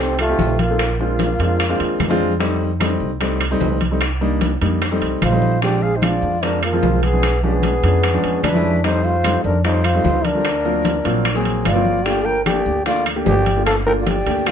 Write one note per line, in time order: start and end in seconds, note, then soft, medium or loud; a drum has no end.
0.00 0.35 C2 medium
0.00 0.20 A3 medium
0.00 0.20 C4 medium
0.00 0.20 D#4 medium
0.00 0.20 G4 medium
0.00 0.19 A4 medium
0.19 0.63 A3 medium
0.19 0.60 F4 medium
0.19 high bongo soft
0.19 high conga soft
0.19 high timbale medium
0.19 claves medium
0.29 0.57 A3 medium
0.29 0.57 C4 medium
0.29 0.57 D#4 medium
0.29 0.57 G4 medium
0.39 1.33 A#1 medium
0.39 high bongo soft
0.39 low bongo medium
0.39 high conga medium
0.39 low timbale medium
0.59 1.01 A#3 medium
0.59 0.99 F4 medium
0.59 high conga medium
0.59 high timbale medium
0.69 0.79 A3 medium
0.69 0.79 C4 medium
0.69 0.79 D#4 medium
0.69 0.80 A4 medium
0.79 high bongo medium
0.79 high conga soft
0.79 high timbale medium
0.79 claves medium
0.99 1.28 G#3 medium
0.99 2.17 A#3 medium
0.99 1.28 C4 medium
0.99 1.28 D4 medium
0.99 2.16 F4 medium
0.99 1.28 F4 medium
0.99 high bongo soft
0.99 high conga soft
1.19 high bongo medium
1.19 high conga medium
1.19 high timbale medium
1.19 low timbale medium
1.39 1.77 F2 medium
1.39 1.61 G#3 medium
1.39 1.61 C4 medium
1.39 1.61 D4 medium
1.39 1.61 F4 medium
1.39 high bongo soft
1.39 high conga soft
1.39 high timbale medium
1.60 high bongo medium
1.60 high conga soft
1.60 high timbale medium
1.60 claves medium
1.69 1.98 G#3 medium
1.69 1.98 C4 medium
1.69 1.98 D4 medium
1.69 1.98 F4 medium
1.79 1.98 D#2 medium
1.79 high bongo soft
1.79 high conga soft
1.79 high timbale medium
1.99 2.94 F2 medium
1.99 high bongo soft
1.99 low bongo medium
1.99 high conga medium
1.99 high timbale medium
1.99 low timbale medium
1.99 claves medium
2.10 2.31 G#3 loud
2.10 2.31 C4 medium
2.10 2.31 D4 medium
2.10 2.31 F4 loud
2.21 high conga medium
2.40 2.68 G3 medium
2.40 2.68 A3 medium
2.40 2.68 C4 medium
2.40 2.69 D#4 medium
2.40 high bongo medium
2.40 high conga soft
2.40 high timbale medium
2.61 high bongo soft
2.61 high conga soft
2.80 3.08 G3 medium
2.80 3.09 A3 medium
2.80 3.09 C4 medium
2.80 3.09 D#4 medium
2.80 high bongo medium
2.80 high conga medium
2.80 high timbale medium
2.80 low timbale medium
2.80 claves medium
3.00 3.57 C2 medium
3.00 high bongo soft
3.00 high conga soft
3.20 3.42 G3 medium
3.20 3.42 A3 medium
3.20 3.42 C4 medium
3.20 3.42 D#4 medium
3.20 high bongo medium
3.20 high conga soft
3.20 high timbale medium
3.40 high bongo soft
3.40 high conga soft
3.40 high timbale medium
3.40 claves medium
3.51 3.79 G3 medium
3.51 3.79 A3 medium
3.51 3.79 C4 medium
3.51 3.80 D#4 loud
3.60 4.55 C2 medium
3.60 high bongo soft
3.60 low bongo medium
3.60 high conga medium
3.60 low timbale medium
3.81 high conga medium
3.81 high timbale medium
3.91 4.01 G3 medium
3.91 4.01 A3 medium
3.91 4.02 C4 medium
3.91 4.02 D#4 medium
4.01 high bongo medium
4.01 high conga soft
4.01 high timbale medium
4.01 claves medium
4.21 4.49 G3 medium
4.21 4.49 A#3 medium
4.21 4.50 D4 medium
4.21 4.50 D#4 medium
4.21 high bongo soft
4.21 high conga soft
4.41 high bongo medium
4.41 high conga medium
4.41 high timbale medium
4.41 low timbale medium
4.61 4.99 F2 medium
4.61 4.82 G3 medium
4.61 4.82 A#3 medium
4.61 4.82 D4 medium
4.61 4.82 D#4 medium
4.61 high bongo soft
4.61 high conga soft
4.61 high timbale medium
4.81 high bongo medium
4.81 high conga soft
4.81 high timbale medium
4.81 claves medium
4.91 5.20 G3 medium
4.91 5.20 A3 medium
4.91 5.20 C4 medium
4.91 5.20 D#4 medium
5.02 5.20 C2 medium
5.02 high bongo soft
5.02 high conga soft
5.02 high timbale medium
5.22 6.16 A#1 medium
5.22 5.61 F4 medium
5.22 5.60 C5 medium
5.22 high bongo soft
5.22 low bongo medium
5.22 high conga medium
5.22 high timbale medium
5.22 low timbale medium
5.22 claves medium
5.32 5.53 G3 medium
5.32 5.53 A3 medium
5.32 5.53 C4 medium
5.32 5.54 D#4 medium
5.42 high conga medium
5.62 5.90 F3 medium
5.62 5.91 G#3 medium
5.62 5.91 C4 medium
5.62 5.91 D4 medium
5.62 5.85 G4 medium
5.62 5.84 D5 medium
5.62 high bongo medium
5.62 high conga soft
5.62 high timbale medium
5.82 5.99 G#4 medium
5.82 5.97 F5 medium
5.82 high bongo soft
5.82 high conga soft
5.96 6.06 D#4 medium
5.96 6.04 C5 medium
6.02 6.31 F3 medium
6.02 6.31 G#3 medium
6.02 6.31 C4 medium
6.02 6.31 D4 medium
6.02 6.46 F4 medium
6.02 6.44 D5 medium
6.02 high bongo medium
6.02 high conga medium
6.02 high timbale medium
6.02 low timbale medium
6.02 claves medium
6.22 6.79 F2 medium
6.22 high bongo soft
6.22 high conga soft
6.42 6.64 F3 medium
6.42 6.64 G#3 medium
6.42 6.64 C4 medium
6.42 6.63 D4 medium
6.42 6.64 F4 medium
6.42 6.63 A#4 medium
6.42 high bongo medium
6.42 high conga soft
6.42 high timbale medium
6.63 7.06 A#3 medium
6.63 7.05 F4 medium
6.63 high bongo soft
6.63 high conga soft
6.63 high timbale medium
6.63 claves medium
6.73 7.01 F3 medium
6.73 7.01 G#3 medium
6.73 7.01 C4 medium
6.73 7.01 F4 medium
6.82 7.77 B1 medium
6.82 high bongo soft
6.82 low bongo medium
6.82 high conga medium
6.82 low timbale medium
7.03 7.44 B3 medium
7.03 7.42 G#4 medium
7.03 high conga medium
7.03 high timbale medium
7.13 7.23 F3 medium
7.13 7.23 G#3 medium
7.13 7.23 C4 medium
7.13 7.24 D4 medium
7.23 high bongo medium
7.23 high conga soft
7.23 high timbale medium
7.23 claves medium
7.43 7.71 F3 medium
7.43 7.71 G#3 medium
7.43 8.40 B3 medium
7.43 7.72 C#4 medium
7.43 7.72 D4 medium
7.43 8.40 G#4 medium
7.43 high bongo soft
7.43 high conga soft
7.63 high bongo soft
7.63 high conga medium
7.63 high timbale medium
7.63 low timbale medium
7.83 8.21 F2 medium
7.83 8.05 F3 medium
7.83 8.05 G#3 medium
7.83 8.05 C#4 medium
7.83 8.05 D4 medium
7.83 high bongo soft
7.83 high conga soft
7.83 high timbale medium
8.03 high bongo medium
8.03 high conga soft
8.03 high timbale medium
8.03 claves medium
8.13 8.42 F3 medium
8.13 8.42 G#3 medium
8.13 8.42 C#4 medium
8.13 8.42 D4 medium
8.23 8.42 E2 medium
8.23 high bongo soft
8.23 high conga soft
8.23 high timbale medium
8.43 9.38 F2 medium
8.43 8.81 D4 medium
8.43 8.81 B4 medium
8.43 high bongo soft
8.43 low bongo medium
8.43 high conga medium
8.43 high timbale medium
8.43 low timbale medium
8.43 claves medium
8.54 8.75 F3 medium
8.54 8.75 G#3 medium
8.54 8.75 C#4 medium
8.54 8.76 E4 medium
8.63 high conga medium
8.84 9.12 G3 medium
8.84 9.13 A3 medium
8.84 9.13 C4 medium
8.84 9.13 D#4 medium
8.84 9.07 D#4 medium
8.84 9.04 C5 medium
8.84 high bongo medium
8.84 high conga soft
8.84 high timbale medium
9.04 9.44 F4 loud
9.04 9.44 C5 medium
9.04 high bongo soft
9.04 high conga soft
9.24 9.52 G3 medium
9.24 9.53 A3 medium
9.24 9.53 C4 medium
9.24 9.53 D#4 medium
9.24 high bongo medium
9.24 high conga medium
9.24 high timbale medium
9.24 low timbale medium
9.24 claves medium
9.44 10.00 F2 medium
9.44 9.63 D4 medium
9.44 9.63 A#4 medium
9.44 high bongo soft
9.44 high conga soft
9.64 9.85 G3 medium
9.64 9.86 A3 medium
9.64 9.86 C4 medium
9.64 9.86 D#4 medium
9.64 9.86 F4 medium
9.64 9.84 C5 medium
9.64 high bongo medium
9.64 high conga soft
9.64 high timbale medium
9.84 10.27 F4 loud
9.84 10.26 C5 medium
9.84 high bongo soft
9.84 high conga soft
9.84 high timbale medium
9.84 claves medium
9.94 10.23 G3 medium
9.94 10.23 A3 medium
9.94 10.23 C4 medium
9.94 10.23 D#4 medium
10.04 10.99 D2 medium
10.04 high bongo soft
10.04 low bongo medium
10.04 high conga medium
10.04 low timbale medium
10.25 11.39 D4 medium
10.25 11.39 A#4 medium
10.25 high conga medium
10.25 high timbale medium
10.34 10.45 G3 medium
10.34 10.45 A3 medium
10.34 10.45 C4 medium
10.34 10.45 F4 medium
10.45 high bongo medium
10.45 high conga soft
10.45 high timbale medium
10.45 claves medium
10.64 10.93 F#3 medium
10.64 10.93 A#3 medium
10.64 10.93 C4 medium
10.64 10.93 F4 medium
10.64 high bongo soft
10.64 high conga soft
10.85 high bongo medium
10.85 high conga medium
10.85 high timbale medium
10.85 low timbale medium
11.04 11.61 A#1 medium
11.04 11.26 F#3 medium
11.04 11.26 A#3 medium
11.04 11.26 C4 medium
11.04 11.26 F4 medium
11.04 high bongo soft
11.04 high conga soft
11.04 high timbale medium
11.25 high bongo medium
11.25 high conga soft
11.25 high timbale medium
11.25 claves medium
11.34 11.63 F#3 medium
11.34 11.63 A#3 medium
11.34 11.63 C4 medium
11.34 11.64 G#4 medium
11.45 high bongo soft
11.45 high conga soft
11.45 high timbale medium
11.65 12.60 G1 medium
11.65 12.07 F4 medium
11.65 12.05 D5 medium
11.65 high bongo soft
11.65 low bongo medium
11.65 high conga medium
11.65 high timbale medium
11.65 low timbale medium
11.65 claves medium
11.75 11.96 F#3 medium
11.75 11.97 A#3 medium
11.75 11.97 C4 medium
11.75 11.97 F4 medium
11.85 high conga medium
12.05 12.34 A3 medium
12.05 12.34 A#3 medium
12.05 12.34 D4 medium
12.05 12.34 F4 medium
12.05 12.28 G4 loud
12.05 12.27 D5 medium
12.05 high bongo medium
12.05 high conga soft
12.05 high timbale medium
12.25 12.46 A#4 medium
12.25 12.45 G5 medium
12.25 high bongo soft
12.25 high conga soft
12.45 12.74 A3 medium
12.45 12.74 A#3 medium
12.45 12.74 D4 medium
12.45 12.83 G4 loud
12.45 12.75 G4 medium
12.45 12.83 D5 medium
12.45 high bongo medium
12.45 high conga medium
12.45 high timbale medium
12.45 low timbale medium
12.45 claves medium
12.66 13.22 D2 medium
12.66 high bongo soft
12.66 high conga soft
12.85 13.07 A3 medium
12.85 13.07 A#3 medium
12.85 13.07 D4 medium
12.85 13.05 F4 medium
12.85 13.08 F4 medium
12.85 13.04 D5 medium
12.85 high bongo medium
12.85 high conga soft
12.85 high timbale medium
13.06 high bongo soft
13.06 high conga soft
13.06 high timbale medium
13.06 claves medium
13.15 13.44 A3 medium
13.15 13.44 A#3 medium
13.15 13.44 D4 medium
13.15 13.44 G4 medium
13.25 14.21 G1 medium
13.25 13.64 G4 loud
13.25 13.63 D5 medium
13.25 high bongo soft
13.25 low bongo medium
13.25 high conga medium
13.25 low timbale medium
13.46 high conga medium
13.46 high timbale medium
13.56 13.77 A3 medium
13.56 13.78 A#3 medium
13.56 13.78 D4 medium
13.56 13.78 F4 medium
13.65 13.76 A4 loud
13.65 13.71 F5 medium
13.65 high bongo medium
13.65 high conga soft
13.65 high timbale medium
13.65 claves medium
13.86 14.14 A3 medium
13.86 14.14 A#3 medium
13.86 14.15 D4 medium
13.86 14.15 F4 medium
13.86 13.92 A#4 loud
13.86 13.92 G5 medium
13.86 high bongo soft
13.86 high conga soft
14.00 14.09 F4 medium
14.00 14.06 D5 medium
14.06 14.49 G4 medium
14.06 14.46 D5 medium
14.06 high bongo medium
14.06 high conga medium
14.06 high timbale medium
14.06 low timbale medium
14.26 14.51 D2 medium
14.26 14.47 A3 medium
14.26 14.48 A#3 medium
14.26 14.48 D4 medium
14.26 14.48 G4 medium
14.26 high bongo soft
14.26 high conga soft
14.26 high timbale medium
14.46 14.51 F4 medium
14.46 14.51 D5 medium
14.46 high bongo medium
14.46 high conga soft
14.46 high timbale medium
14.46 claves medium